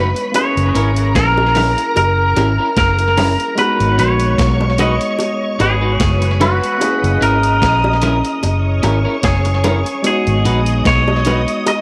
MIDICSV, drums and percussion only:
0, 0, Header, 1, 2, 480
1, 0, Start_track
1, 0, Tempo, 808843
1, 202, Time_signature, 4, 2, 24, 8
1, 7010, End_track
2, 0, Start_track
2, 0, Title_t, "Drums"
2, 97, Note_on_c, 9, 42, 54
2, 156, Note_off_c, 9, 42, 0
2, 204, Note_on_c, 9, 42, 102
2, 205, Note_on_c, 9, 60, 67
2, 263, Note_off_c, 9, 42, 0
2, 264, Note_off_c, 9, 60, 0
2, 340, Note_on_c, 9, 42, 45
2, 399, Note_off_c, 9, 42, 0
2, 447, Note_on_c, 9, 42, 77
2, 507, Note_off_c, 9, 42, 0
2, 572, Note_on_c, 9, 42, 60
2, 632, Note_off_c, 9, 42, 0
2, 684, Note_on_c, 9, 36, 112
2, 686, Note_on_c, 9, 42, 84
2, 689, Note_on_c, 9, 38, 110
2, 743, Note_off_c, 9, 36, 0
2, 745, Note_off_c, 9, 42, 0
2, 749, Note_off_c, 9, 38, 0
2, 816, Note_on_c, 9, 60, 59
2, 875, Note_off_c, 9, 60, 0
2, 920, Note_on_c, 9, 46, 56
2, 930, Note_on_c, 9, 61, 72
2, 979, Note_off_c, 9, 46, 0
2, 989, Note_off_c, 9, 61, 0
2, 1056, Note_on_c, 9, 42, 55
2, 1115, Note_off_c, 9, 42, 0
2, 1163, Note_on_c, 9, 60, 56
2, 1167, Note_on_c, 9, 42, 99
2, 1222, Note_off_c, 9, 60, 0
2, 1227, Note_off_c, 9, 42, 0
2, 1403, Note_on_c, 9, 42, 67
2, 1406, Note_on_c, 9, 60, 79
2, 1463, Note_off_c, 9, 42, 0
2, 1465, Note_off_c, 9, 60, 0
2, 1642, Note_on_c, 9, 36, 118
2, 1642, Note_on_c, 9, 42, 107
2, 1646, Note_on_c, 9, 38, 120
2, 1701, Note_off_c, 9, 42, 0
2, 1702, Note_off_c, 9, 36, 0
2, 1706, Note_off_c, 9, 38, 0
2, 1772, Note_on_c, 9, 42, 52
2, 1831, Note_off_c, 9, 42, 0
2, 1884, Note_on_c, 9, 46, 71
2, 1886, Note_on_c, 9, 61, 85
2, 1943, Note_off_c, 9, 46, 0
2, 1945, Note_off_c, 9, 61, 0
2, 2017, Note_on_c, 9, 42, 52
2, 2076, Note_off_c, 9, 42, 0
2, 2122, Note_on_c, 9, 42, 96
2, 2125, Note_on_c, 9, 60, 66
2, 2182, Note_off_c, 9, 42, 0
2, 2184, Note_off_c, 9, 60, 0
2, 2257, Note_on_c, 9, 42, 49
2, 2317, Note_off_c, 9, 42, 0
2, 2367, Note_on_c, 9, 42, 81
2, 2426, Note_off_c, 9, 42, 0
2, 2490, Note_on_c, 9, 42, 61
2, 2549, Note_off_c, 9, 42, 0
2, 2602, Note_on_c, 9, 36, 105
2, 2604, Note_on_c, 9, 42, 87
2, 2607, Note_on_c, 9, 38, 110
2, 2661, Note_off_c, 9, 36, 0
2, 2663, Note_off_c, 9, 42, 0
2, 2667, Note_off_c, 9, 38, 0
2, 2733, Note_on_c, 9, 60, 62
2, 2793, Note_off_c, 9, 60, 0
2, 2838, Note_on_c, 9, 42, 77
2, 2843, Note_on_c, 9, 61, 71
2, 2897, Note_off_c, 9, 42, 0
2, 2903, Note_off_c, 9, 61, 0
2, 2972, Note_on_c, 9, 42, 53
2, 3032, Note_off_c, 9, 42, 0
2, 3078, Note_on_c, 9, 60, 61
2, 3086, Note_on_c, 9, 42, 97
2, 3137, Note_off_c, 9, 60, 0
2, 3145, Note_off_c, 9, 42, 0
2, 3323, Note_on_c, 9, 42, 66
2, 3323, Note_on_c, 9, 60, 77
2, 3382, Note_off_c, 9, 42, 0
2, 3382, Note_off_c, 9, 60, 0
2, 3560, Note_on_c, 9, 42, 104
2, 3561, Note_on_c, 9, 36, 118
2, 3565, Note_on_c, 9, 38, 119
2, 3619, Note_off_c, 9, 42, 0
2, 3620, Note_off_c, 9, 36, 0
2, 3624, Note_off_c, 9, 38, 0
2, 3690, Note_on_c, 9, 42, 58
2, 3750, Note_off_c, 9, 42, 0
2, 3803, Note_on_c, 9, 61, 93
2, 3804, Note_on_c, 9, 42, 62
2, 3862, Note_off_c, 9, 61, 0
2, 3863, Note_off_c, 9, 42, 0
2, 3938, Note_on_c, 9, 42, 51
2, 3997, Note_off_c, 9, 42, 0
2, 4041, Note_on_c, 9, 60, 70
2, 4044, Note_on_c, 9, 42, 99
2, 4101, Note_off_c, 9, 60, 0
2, 4103, Note_off_c, 9, 42, 0
2, 4178, Note_on_c, 9, 42, 50
2, 4238, Note_off_c, 9, 42, 0
2, 4286, Note_on_c, 9, 42, 74
2, 4346, Note_off_c, 9, 42, 0
2, 4411, Note_on_c, 9, 42, 61
2, 4471, Note_off_c, 9, 42, 0
2, 4521, Note_on_c, 9, 36, 100
2, 4525, Note_on_c, 9, 42, 87
2, 4528, Note_on_c, 9, 38, 118
2, 4580, Note_off_c, 9, 36, 0
2, 4584, Note_off_c, 9, 42, 0
2, 4587, Note_off_c, 9, 38, 0
2, 4654, Note_on_c, 9, 60, 61
2, 4713, Note_off_c, 9, 60, 0
2, 4757, Note_on_c, 9, 42, 80
2, 4765, Note_on_c, 9, 61, 68
2, 4816, Note_off_c, 9, 42, 0
2, 4824, Note_off_c, 9, 61, 0
2, 4893, Note_on_c, 9, 42, 52
2, 4952, Note_off_c, 9, 42, 0
2, 5001, Note_on_c, 9, 60, 54
2, 5005, Note_on_c, 9, 42, 99
2, 5061, Note_off_c, 9, 60, 0
2, 5065, Note_off_c, 9, 42, 0
2, 5241, Note_on_c, 9, 42, 69
2, 5242, Note_on_c, 9, 60, 83
2, 5300, Note_off_c, 9, 42, 0
2, 5302, Note_off_c, 9, 60, 0
2, 5478, Note_on_c, 9, 42, 118
2, 5480, Note_on_c, 9, 36, 113
2, 5483, Note_on_c, 9, 38, 124
2, 5538, Note_off_c, 9, 42, 0
2, 5540, Note_off_c, 9, 36, 0
2, 5542, Note_off_c, 9, 38, 0
2, 5608, Note_on_c, 9, 42, 54
2, 5667, Note_off_c, 9, 42, 0
2, 5720, Note_on_c, 9, 42, 66
2, 5722, Note_on_c, 9, 61, 91
2, 5779, Note_off_c, 9, 42, 0
2, 5782, Note_off_c, 9, 61, 0
2, 5853, Note_on_c, 9, 42, 58
2, 5912, Note_off_c, 9, 42, 0
2, 5959, Note_on_c, 9, 42, 94
2, 5959, Note_on_c, 9, 60, 67
2, 6018, Note_off_c, 9, 42, 0
2, 6019, Note_off_c, 9, 60, 0
2, 6093, Note_on_c, 9, 42, 46
2, 6153, Note_off_c, 9, 42, 0
2, 6204, Note_on_c, 9, 42, 79
2, 6263, Note_off_c, 9, 42, 0
2, 6327, Note_on_c, 9, 42, 63
2, 6387, Note_off_c, 9, 42, 0
2, 6441, Note_on_c, 9, 36, 113
2, 6441, Note_on_c, 9, 42, 81
2, 6445, Note_on_c, 9, 38, 109
2, 6500, Note_off_c, 9, 36, 0
2, 6501, Note_off_c, 9, 42, 0
2, 6504, Note_off_c, 9, 38, 0
2, 6573, Note_on_c, 9, 60, 61
2, 6632, Note_off_c, 9, 60, 0
2, 6675, Note_on_c, 9, 42, 81
2, 6686, Note_on_c, 9, 61, 68
2, 6734, Note_off_c, 9, 42, 0
2, 6745, Note_off_c, 9, 61, 0
2, 6812, Note_on_c, 9, 42, 54
2, 6872, Note_off_c, 9, 42, 0
2, 6921, Note_on_c, 9, 60, 59
2, 6923, Note_on_c, 9, 42, 101
2, 6981, Note_off_c, 9, 60, 0
2, 6983, Note_off_c, 9, 42, 0
2, 7010, End_track
0, 0, End_of_file